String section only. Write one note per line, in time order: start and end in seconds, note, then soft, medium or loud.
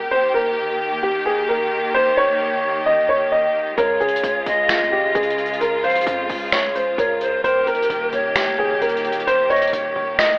0.00 3.74 G4 medium
0.11 3.74 D#3 medium
0.11 3.74 A#3 medium
3.78 7.40 C#3 medium
3.78 7.40 G#3 medium
3.78 7.40 F4 medium
7.44 10.38 D#3 medium
7.44 10.38 A#3 medium
7.44 10.38 G4 medium